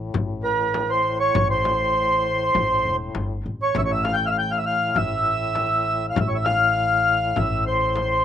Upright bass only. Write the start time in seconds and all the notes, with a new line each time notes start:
Already playing: A1
0.14 A1
1.35 A1
2.55 A1
2.85 E1
3.15 G1
3.46 A1
3.76 A1
4.96 A1
6.17 A1
7.37 A1